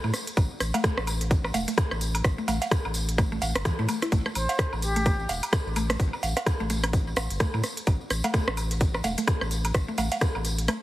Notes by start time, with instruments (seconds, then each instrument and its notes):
0.04 sub bass A2, synth arpeggio sound A3, tambourine, low woodblock
0.14 cross-stick, open hi-hat, tambourine
0.27 closed hi-hat, tambourine
0.37 sub bass A1, kick, closed hi-hat, tambourine, low woodblock
0.51 tambourine
0.60 sub bass A1, cross-stick, open hi-hat, tambourine, high woodblock
0.74 synth arpeggio sound A3, closed hi-hat, tambourine, cowbell, low woodblock
0.84 synth arpeggio sound A3, kick, cross-stick, closed hi-hat, tambourine
0.98 sub bass A1, cross-stick, tambourine
1.07 open hi-hat, tambourine, low woodblock
1.21 closed hi-hat, tambourine
1.31 kick, closed hi-hat, tambourine
1.44 cross-stick, tambourine, low woodblock
1.54 sub bass E1, synth arpeggio sound A3, open hi-hat, tambourine, cowbell
1.68 synth arpeggio sound A3, closed hi-hat, tambourine
1.78 kick, cross-stick, closed hi-hat, tambourine, low woodblock
1.91 sub bass A1, cross-stick, tambourine, high woodblock
2.01 open hi-hat, tambourine
2.15 closed hi-hat, low woodblock
2.24 sub bass A1, kick, cross-stick, closed hi-hat, tambourine
2.38 synth arpeggio sound A3, tambourine
2.48 sub bass A1, synth arpeggio sound A3, open hi-hat, tambourine, cowbell, low woodblock
2.62 closed hi-hat, tambourine, cowbell
2.71 kick, cross-stick, closed hi-hat, tambourine
2.85 sub bass A1, tambourine, low woodblock
2.94 open hi-hat, tambourine
3.09 closed hi-hat, tambourine
3.18 synth arpeggio sound A3, kick, cross-stick, closed hi-hat, tambourine, high woodblock, low woodblock
3.32 synth arpeggio sound A3, tambourine
3.42 sub bass A1, open hi-hat, tambourine, cowbell
3.55 sub bass G1, cross-stick, closed hi-hat, low woodblock
3.65 synth arpeggio sound E3, kick, cross-stick, closed hi-hat, tambourine
3.79 sub bass A2, synth arpeggio sound A3, tambourine
3.89 synth arpeggio sound A3, open hi-hat, tambourine, low woodblock
4.02 synth arpeggio sound E4, cross-stick, closed hi-hat, tambourine
4.12 sub bass A1, synth arpeggio sound A3, kick, closed hi-hat, tambourine
4.26 synth arpeggio sound A3, cross-stick, tambourine, high woodblock
4.35 sub bass A1, flute C5, open hi-hat, tambourine, low woodblock
4.49 closed hi-hat, tambourine, cowbell
4.59 kick, cross-stick, closed hi-hat, tambourine
4.73 sub bass A1, tambourine, low woodblock
4.82 flute G4, open hi-hat, tambourine
4.96 synth arpeggio sound A3, closed hi-hat, tambourine
5.05 synth arpeggio sound A3, kick, cross-stick, closed hi-hat, tambourine, low woodblock
5.20 tambourine
5.29 sub bass E1, open hi-hat, tambourine, cowbell
5.43 closed hi-hat, tambourine, low woodblock
5.53 kick, cross-stick, closed hi-hat, tambourine, high woodblock
5.66 sub bass A1, tambourine
5.76 synth arpeggio sound A3, open hi-hat, tambourine, low woodblock
5.90 synth arpeggio sound A3, cross-stick, closed hi-hat, tambourine
6.00 sub bass A1, kick, closed hi-hat, tambourine
6.13 tambourine, low woodblock
6.23 sub bass A1, open hi-hat, tambourine, cowbell
6.36 cross-stick, closed hi-hat, tambourine, cowbell
6.46 kick, cross-stick, closed hi-hat, tambourine, low woodblock
6.60 sub bass A1, synth arpeggio sound A3, tambourine
6.70 synth arpeggio sound A3, open hi-hat, tambourine
6.84 cross-stick, closed hi-hat, tambourine, high woodblock, low woodblock
6.93 kick, closed hi-hat, tambourine
7.07 tambourine
7.16 sub bass A1, cross-stick, open hi-hat, tambourine, cowbell, low woodblock
7.30 sub bass G1, closed hi-hat, tambourine
7.40 synth arpeggio sound A3, kick, cross-stick, closed hi-hat, tambourine
7.54 sub bass A2, synth arpeggio sound A3, tambourine, low woodblock
7.63 cross-stick, open hi-hat, tambourine
7.77 closed hi-hat, tambourine
7.87 sub bass A1, kick, closed hi-hat, tambourine, low woodblock
8.01 tambourine
8.10 sub bass A1, cross-stick, open hi-hat, tambourine, high woodblock
8.24 synth arpeggio sound A3, closed hi-hat, tambourine, cowbell, low woodblock
8.34 synth arpeggio sound A3, kick, cross-stick, closed hi-hat, tambourine
8.48 sub bass A1, cross-stick, tambourine
8.57 open hi-hat, tambourine, low woodblock
8.71 closed hi-hat, tambourine
8.80 kick, closed hi-hat, tambourine
8.94 cross-stick, tambourine, low woodblock
9.04 sub bass E1, synth arpeggio sound A3, open hi-hat, tambourine, cowbell
9.18 synth arpeggio sound A3, closed hi-hat, tambourine
9.28 kick, cross-stick, closed hi-hat, tambourine, low woodblock
9.41 sub bass A1, cross-stick, tambourine, high woodblock
9.51 open hi-hat, tambourine
9.64 closed hi-hat, tambourine, low woodblock
9.74 sub bass A1, kick, cross-stick, closed hi-hat, tambourine
9.88 synth arpeggio sound A3, tambourine
9.98 sub bass A1, synth arpeggio sound A3, open hi-hat, tambourine, cowbell, low woodblock
10.12 closed hi-hat, tambourine, cowbell
10.21 kick, cross-stick, closed hi-hat, tambourine
10.35 sub bass A1, tambourine, low woodblock
10.45 open hi-hat, tambourine
10.58 closed hi-hat, tambourine
10.68 synth arpeggio sound A3, cross-stick, closed hi-hat, tambourine, high woodblock, low woodblock